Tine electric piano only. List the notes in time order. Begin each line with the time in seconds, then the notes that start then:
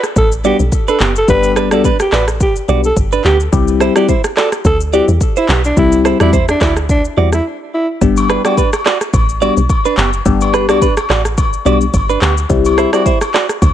0.44 G3 B3 D4 G4
1.28 G3 B3 D4 G4
1.71 G3 B3 D4 G4
2.68 G3 B3 D4 G4
3.52 G3 C4 E4 G4
3.96 G3 C4 E4 G4
4.93 G3 C4 E4 G4
5.77 G3 C4 E4 G4
6.20 G3 C4 E4 G4
7.17 G3 C4 E4 G4
8.01 G3 B3 D4 G4
8.45 G3 B3 D4 G4
9.41 G3 B3 D4 G4
10.25 G3 B3 D4 G4
10.69 G3 B3 D4 G4
11.65 G3 B3 D4 G4
12.49 G3 C4 E4 G4
12.93 G3 C4 E4 G4